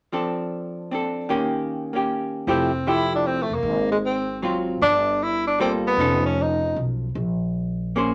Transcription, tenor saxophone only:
0, 0, Header, 1, 2, 480
1, 0, Start_track
1, 0, Tempo, 390879
1, 152, Time_signature, 3, 2, 24, 8
1, 10001, End_track
2, 0, Start_track
2, 0, Title_t, "Tenor saxophone"
2, 0, Program_c, 0, 66
2, 3067, Note_on_c, 0, 60, 87
2, 3543, Note_on_c, 0, 64, 99
2, 3561, Note_off_c, 0, 60, 0
2, 3840, Note_off_c, 0, 64, 0
2, 3874, Note_on_c, 0, 62, 87
2, 4011, Note_on_c, 0, 60, 84
2, 4029, Note_off_c, 0, 62, 0
2, 4205, Note_on_c, 0, 57, 75
2, 4223, Note_off_c, 0, 60, 0
2, 4348, Note_on_c, 0, 58, 93
2, 4367, Note_off_c, 0, 57, 0
2, 4802, Note_off_c, 0, 58, 0
2, 4809, Note_on_c, 0, 56, 73
2, 4880, Note_off_c, 0, 56, 0
2, 4981, Note_on_c, 0, 60, 78
2, 5415, Note_off_c, 0, 60, 0
2, 5922, Note_on_c, 0, 62, 102
2, 6423, Note_on_c, 0, 64, 96
2, 6441, Note_off_c, 0, 62, 0
2, 6711, Note_off_c, 0, 64, 0
2, 6718, Note_on_c, 0, 62, 85
2, 6870, Note_off_c, 0, 62, 0
2, 6890, Note_on_c, 0, 60, 81
2, 7027, Note_off_c, 0, 60, 0
2, 7210, Note_on_c, 0, 59, 90
2, 7645, Note_off_c, 0, 59, 0
2, 7682, Note_on_c, 0, 61, 81
2, 7882, Note_on_c, 0, 63, 75
2, 7901, Note_off_c, 0, 61, 0
2, 8338, Note_off_c, 0, 63, 0
2, 10001, End_track
0, 0, End_of_file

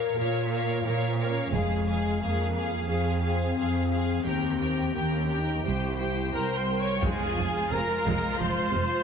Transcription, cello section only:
0, 0, Header, 1, 2, 480
1, 0, Start_track
1, 0, Key_signature, -4, "minor"
1, 0, Tempo, 678733
1, 1093, Time_signature, 4, 2, 24, 8
1, 3012, Tempo, 688863
1, 6337, End_track
2, 0, Start_track
2, 0, Title_t, "Cello section"
2, 0, Program_c, 0, 48
2, 118, Note_on_c, 0, 46, 59
2, 549, Note_off_c, 0, 46, 0
2, 602, Note_on_c, 0, 46, 55
2, 1030, Note_off_c, 0, 46, 0
2, 1076, Note_on_c, 0, 41, 56
2, 1508, Note_off_c, 0, 41, 0
2, 1567, Note_on_c, 0, 41, 51
2, 1994, Note_off_c, 0, 41, 0
2, 2037, Note_on_c, 0, 41, 52
2, 2469, Note_off_c, 0, 41, 0
2, 2518, Note_on_c, 0, 41, 51
2, 2949, Note_off_c, 0, 41, 0
2, 3001, Note_on_c, 0, 39, 49
2, 3428, Note_off_c, 0, 39, 0
2, 3488, Note_on_c, 0, 39, 43
2, 3917, Note_off_c, 0, 39, 0
2, 3978, Note_on_c, 0, 36, 43
2, 4407, Note_off_c, 0, 36, 0
2, 4461, Note_on_c, 0, 36, 40
2, 4889, Note_off_c, 0, 36, 0
2, 4938, Note_on_c, 0, 41, 53
2, 4994, Note_off_c, 0, 41, 0
2, 5183, Note_on_c, 0, 41, 38
2, 5238, Note_off_c, 0, 41, 0
2, 5425, Note_on_c, 0, 41, 37
2, 5481, Note_off_c, 0, 41, 0
2, 5663, Note_on_c, 0, 41, 52
2, 5719, Note_off_c, 0, 41, 0
2, 5900, Note_on_c, 0, 41, 41
2, 5956, Note_off_c, 0, 41, 0
2, 6136, Note_on_c, 0, 41, 40
2, 6192, Note_off_c, 0, 41, 0
2, 6337, End_track
0, 0, End_of_file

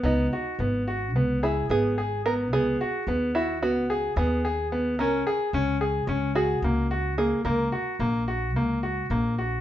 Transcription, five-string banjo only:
0, 0, Header, 1, 2, 480
1, 0, Start_track
1, 0, Tempo, 549954
1, 36, Time_signature, 9, 3, 24, 8
1, 8385, End_track
2, 0, Start_track
2, 0, Title_t, "Five-string banjo"
2, 0, Program_c, 0, 105
2, 43, Note_on_c, 0, 63, 67
2, 1248, Note_off_c, 0, 63, 0
2, 1252, Note_on_c, 0, 64, 74
2, 1493, Note_on_c, 0, 68, 79
2, 1495, Note_off_c, 0, 64, 0
2, 1936, Note_off_c, 0, 68, 0
2, 1969, Note_on_c, 0, 70, 82
2, 2034, Note_off_c, 0, 70, 0
2, 2208, Note_on_c, 0, 68, 84
2, 2922, Note_on_c, 0, 64, 78
2, 2949, Note_off_c, 0, 68, 0
2, 3160, Note_off_c, 0, 64, 0
2, 3164, Note_on_c, 0, 66, 83
2, 3607, Note_off_c, 0, 66, 0
2, 3639, Note_on_c, 0, 68, 82
2, 4320, Note_off_c, 0, 68, 0
2, 4355, Note_on_c, 0, 70, 84
2, 5546, Note_on_c, 0, 66, 81
2, 5583, Note_off_c, 0, 70, 0
2, 6228, Note_off_c, 0, 66, 0
2, 6267, Note_on_c, 0, 68, 72
2, 6497, Note_off_c, 0, 68, 0
2, 6500, Note_on_c, 0, 70, 73
2, 8385, Note_off_c, 0, 70, 0
2, 8385, End_track
0, 0, End_of_file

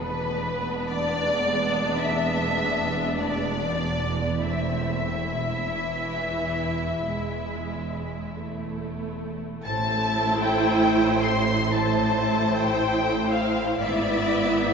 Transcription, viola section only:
0, 0, Header, 1, 2, 480
1, 0, Start_track
1, 0, Key_signature, 0, "minor"
1, 0, Tempo, 1086957
1, 880, Tempo, 1165049
1, 1360, Tempo, 1273885
1, 1831, Time_signature, 4, 2, 24, 8
1, 2320, Tempo, 1318681
1, 3760, Tempo, 1050788
1, 5200, Tempo, 1020408
1, 6104, End_track
2, 0, Start_track
2, 0, Title_t, "Viola section"
2, 0, Program_c, 0, 48
2, 0, Note_on_c, 0, 56, 75
2, 0, Note_on_c, 0, 59, 80
2, 1815, Note_off_c, 0, 56, 0
2, 1815, Note_off_c, 0, 59, 0
2, 1829, Note_on_c, 0, 57, 52
2, 1831, Note_on_c, 0, 60, 64
2, 2254, Note_off_c, 0, 57, 0
2, 2255, Note_off_c, 0, 60, 0
2, 2319, Note_on_c, 0, 52, 71
2, 2790, Note_off_c, 0, 52, 0
2, 2803, Note_on_c, 0, 56, 59
2, 3287, Note_off_c, 0, 56, 0
2, 3288, Note_on_c, 0, 57, 62
2, 3756, Note_off_c, 0, 57, 0
2, 3760, Note_on_c, 0, 64, 98
2, 3761, Note_on_c, 0, 57, 90
2, 4699, Note_off_c, 0, 64, 0
2, 4700, Note_off_c, 0, 57, 0
2, 4713, Note_on_c, 0, 57, 73
2, 4714, Note_on_c, 0, 64, 79
2, 5658, Note_off_c, 0, 57, 0
2, 5659, Note_off_c, 0, 64, 0
2, 5681, Note_on_c, 0, 59, 83
2, 5681, Note_on_c, 0, 64, 90
2, 6104, Note_off_c, 0, 59, 0
2, 6104, Note_off_c, 0, 64, 0
2, 6104, End_track
0, 0, End_of_file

